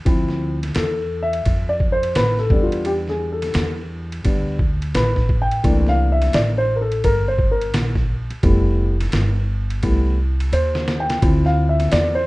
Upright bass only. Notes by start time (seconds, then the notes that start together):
0.06 D2
0.76 E2
1.46 F2
2.15 A1
2.50 E2
3.55 E2
4.25 D2
4.95 A1
5.65 C2
6.34 A1
7.05 G1
7.74 A#1
8.31 muted upright bass stroke
8.43 F1
9.13 G1
9.83 C2
10.52 D#2
11.22 D2
11.93 E2